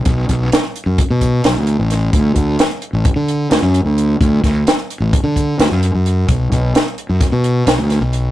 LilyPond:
<<
  \new Staff \with { instrumentName = "Fingered electric bass" } { \clef bass \time 9/8 \key d \major \tempo 4. = 87 b,,8 b,,8 r8. fis,16 r16 b,8. b,,16 d,8 a,,8. | d,8 d,8 r8. a,,16 r16 d8. d,16 fis,8 d,8. | d,8 d,8 r8. a,,16 r16 d8. d,16 fis,8 fis,8. | b,,8 b,,8 r8. fis,16 r16 b,8. b,,16 d,8 b,,8. | }
  \new DrumStaff \with { instrumentName = "Drums" } \drummode { \time 9/8 <hh bd>8 <hh bd>8 <hh sn>8 hh8 <hh bd>8 <hh bd>8 <hh sn>8 hh8 <hh sn>8 | <hh bd>8 <hh bd>8 <hh sn>8 hh8 <hh bd>8 hh8 <hh sn>8 hh8 hh8 | <hh bd>8 <hh bd sn>8 <hh sn>8 hh8 <hh bd>8 <hh bd>8 <hh sn>8 hh8 hh8 | <hh bd>8 <hh bd>8 <hh sn>8 hh8 <hh bd sn>8 hh8 <hh sn>8 <hh sn>8 hh8 | }
>>